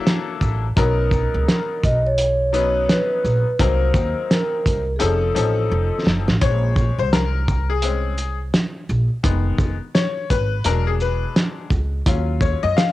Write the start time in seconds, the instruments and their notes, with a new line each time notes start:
Already playing: upright piano F#3 A#3 D4 E4 A4
0.07 snare, closed hi-hat
0.41 upright bass A1, kick, shaker
0.76 upright bass B1, upright piano F#3 B3 C#4 D#4 A#4, vibraphone A#4, kick, closed hi-hat
1.11 kick, shaker
1.34 upright bass C#2
1.48 snare, closed hi-hat
1.83 upright bass B1, vibraphone D#5, kick, closed hi-hat, shaker
2.06 vibraphone C#5
2.18 closed hi-hat
2.53 upright piano F#3 B3 C#4 D#4 B4, closed hi-hat, shaker
2.84 vibraphone C#5
2.89 vibraphone B4, snare, closed hi-hat
3.24 upright bass A#1, shaker
3.59 upright bass C2, upright piano F#3 A#3 C4 D#4 A#4, vibraphone C5, kick, closed hi-hat
3.94 upright bass D#2, kick, shaker
4.30 vibraphone A#4, snare, closed hi-hat
4.66 upright bass C2, kick, closed hi-hat, shaker
4.96 upright piano F3 C4 C#4 D#4, vibraphone G#4, closed hi-hat
5.01 upright bass F1, upright piano A4, vibraphone A4
5.35 upright bass A1, upright piano F3 C4 C#4 D#4 A4, closed hi-hat, shaker
5.71 upright bass F1
6.06 upright bass F#1, snare
6.28 upright bass A1, snare
6.41 upright bass A#1, upright piano G#3 C#4 C5 C#5, kick, closed hi-hat
6.76 kick, shaker
6.98 upright bass C2, upright piano C5
7.13 upright piano A#4, snare, closed hi-hat
7.48 kick, shaker
7.70 upright piano G#4
7.82 upright piano G#3 C4 C#4, closed hi-hat
8.18 closed hi-hat, shaker
8.54 snare, closed hi-hat
8.89 upright bass A#1, shaker
9.23 upright bass F1, upright piano D#3 G#3 B3, kick, closed hi-hat
9.59 upright bass F1, kick, shaker
9.95 upright piano C#5, snare, closed hi-hat
10.30 upright bass G#1, upright piano B4, kick, closed hi-hat, shaker
10.64 upright bass E1, upright piano F#3 G#3 D4 A#4, closed hi-hat
10.87 upright piano G#4
11.00 upright piano B4, shaker
11.36 snare, closed hi-hat
11.70 upright bass C#2, kick, shaker
12.06 upright bass D#2, upright piano F#3 C#4 F4, kick, closed hi-hat
12.41 upright piano C#5, kick, shaker
12.63 upright bass F#2, upright piano D#5
12.77 upright piano F5, snare, closed hi-hat